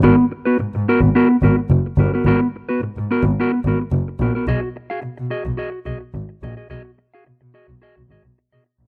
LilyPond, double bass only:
\new Staff \with { instrumentName = "Double bass" } { \clef bass \time 4/4 \key gis \dorian \tempo 4 = 108 gis,,8. r16 gis,16 gis,16 r16 gis,,16 r8 gis,,8 fis,,16 r16 g,,16 r16 | gis,,8. r16 gis,16 gis,16 r16 gis,,16 r8 gis,,8 fis,,16 r16 ais,,16 r16 | b,,8. r16 b,16 b,16 r16 b,,16 r8 b,,8 gis,,16 r16 ais,,16 r16 | b,,8. r16 b,16 b,16 r16 b,,16 r16 b,,16 gis,,16 b,,16 r16 b,16 r16 ais,,16 | }